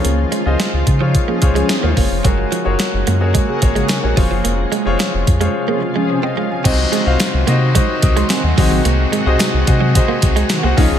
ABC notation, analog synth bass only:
X:1
M:4/4
L:1/16
Q:1/4=109
K:Db
V:1 name="Analog synth bass" clef=bass
D,,2 z D,, z D,, D,3 z D,,2 z E,, G,,, F,,, | G,,,2 z G,,, z G,,, G,,3 z A,,,2 z B,,, F,,, G,,, | F,,,2 z F,,, z F,,, F,,2 z8 | C,,2 z C,, z C,, C,3 z C,,2 z E,, C,, B,,, |
C,,2 z C,, z C,, C,3 z C,,2 z C,, D,, C,, |]